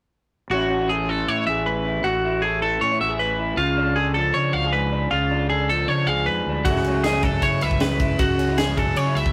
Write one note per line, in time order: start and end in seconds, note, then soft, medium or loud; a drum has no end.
0.50 1.23 A1 medium
0.50 1.65 A2 medium
0.50 1.09 E3 soft
0.50 0.70 C#4 medium
0.50 0.70 E4 medium
0.50 0.89 F#4 medium
0.54 0.90 F#4 medium
0.70 0.81 C#4 medium
0.81 1.28 E4 soft
0.89 1.09 G#4 medium
0.89 1.47 A4 medium
1.09 2.60 E3 medium
1.09 1.28 A4 medium
1.28 1.46 A2 medium
1.28 1.84 E4 medium
1.28 1.46 C#5 medium
1.47 2.01 A1 medium
1.47 2.03 G#4 medium
1.47 1.66 E5 medium
1.66 2.02 A2 medium
1.66 2.04 B4 medium
1.85 2.02 E4 medium
2.04 2.77 A1 medium
2.04 3.20 A2 medium
2.04 2.42 F#4 medium
2.25 2.82 E4 medium
2.42 2.61 G#4 medium
2.42 3.00 A4 medium
2.62 3.58 E3 medium
2.62 2.81 A4 medium
2.81 2.99 A2 medium
2.81 2.91 C#4 medium
2.81 3.00 C#5 medium
2.91 3.38 E4 soft
3.00 3.55 A1 medium
3.00 3.09 F#4 medium
3.00 3.20 E5 medium
3.09 3.57 G#4 soft
3.19 3.56 A2 medium
3.19 3.58 B4 medium
3.39 3.56 E4 medium
3.57 4.30 C#2 medium
3.57 4.16 C#3 medium
3.57 3.96 F4 medium
3.77 4.37 D4 medium
3.96 4.14 G#4 medium
3.96 4.54 A4 medium
4.14 5.10 F3 medium
4.14 4.34 A4 medium
4.34 4.52 C#3 medium
4.34 4.91 D4 medium
4.34 4.53 C#5 medium
4.53 5.08 C#2 medium
4.53 4.65 F#4 medium
4.53 4.73 F5 medium
4.65 5.12 G#4 soft
4.73 5.10 G#2 medium
4.73 5.10 B4 medium
4.92 5.09 D4 medium
5.11 5.84 C#2 medium
5.11 5.69 C#3 medium
5.11 5.49 F4 medium
5.31 5.89 D4 medium
5.50 5.69 G#4 medium
5.50 6.07 A4 medium
5.70 6.64 F3 medium
5.70 5.88 A4 medium
5.88 6.06 C#3 medium
5.88 6.47 D4 medium
5.88 6.07 C#5 medium
6.06 6.25 C#2 medium
6.06 6.69 G#4 medium
6.06 6.26 F5 medium
6.26 6.44 F2 medium
6.26 6.64 G#2 medium
6.26 6.65 B4 medium
6.46 6.64 D2 medium
6.46 6.64 D4 medium
6.65 7.39 C#2 medium
6.65 7.24 C#3 medium
6.65 7.22 F#3 medium
6.65 9.32 A3 medium
6.65 6.87 E4 medium
6.65 7.04 F#4 medium
6.65 kick loud
6.65 ride medium
6.70 7.05 G#4 medium
6.76 snare soft
6.84 6.95 C#4 medium
6.84 ride medium
6.95 7.41 E4 soft
7.04 7.23 G#4 medium
7.04 7.61 G#4 medium
7.04 snare loud
7.04 ride medium
7.23 8.52 F#3 medium
7.23 7.43 A4 medium
7.23 kick medium
7.23 ride medium
7.42 7.60 C#3 medium
7.42 7.99 E4 medium
7.42 7.62 C#5 medium
7.42 kick medium
7.42 ride medium
7.61 8.17 C#2 medium
7.61 8.17 B4 medium
7.61 7.81 E5 medium
7.61 ride medium
7.71 kick medium
7.80 8.16 C#3 medium
7.80 8.20 B4 medium
7.80 snare loud
7.80 ride medium
8.00 8.17 E4 medium
8.00 kick medium
8.00 ride medium
8.17 8.93 C#2 medium
8.17 8.76 C#3 medium
8.17 8.58 F#4 medium
8.17 kick loud
8.17 ride medium
8.38 8.49 C#4 medium
8.38 ride medium
8.49 8.95 E4 soft
8.58 8.77 G#4 medium
8.58 9.32 G#4 medium
8.58 snare loud
8.58 ride medium
8.77 9.32 F#3 medium
8.77 8.97 A4 medium
8.77 kick medium
8.77 ride medium
8.96 9.15 C#3 medium
8.96 9.06 C#4 medium
8.96 9.16 C#5 medium
8.96 ride medium
9.06 9.32 E4 medium
9.15 9.32 C#2 medium
9.15 9.32 B2 medium
9.15 9.32 E5 medium
9.15 ride medium
9.26 kick medium